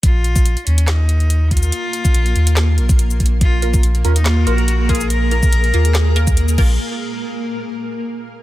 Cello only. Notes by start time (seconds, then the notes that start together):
0.03 F4
0.67 C#4
0.88 D#4
1.51 F4
3.41 F4
4.05 C#4
4.16 D#4
4.26 F4
4.47 F#4
4.89 G#4
5.10 A#4